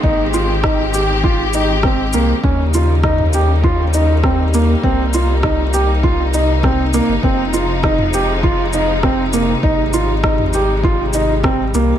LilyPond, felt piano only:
\new Staff \with { instrumentName = "Felt piano" } { \time 4/4 \key aes \major \tempo 4 = 100 ees'8 f'8 ees'8 g'8 f'8 ees'8 c'8 bes8 | des'8 f'8 ees'8 g'8 f'8 ees'8 c'8 bes8 | c'8 f'8 ees'8 g'8 f'8 ees'8 c'8 bes8 | c'8 f'8 ees'8 g'8 f'8 ees'8 c'8 bes8 |
ees'8 f'8 ees'8 g'8 f'8 ees'8 c'8 bes8 | }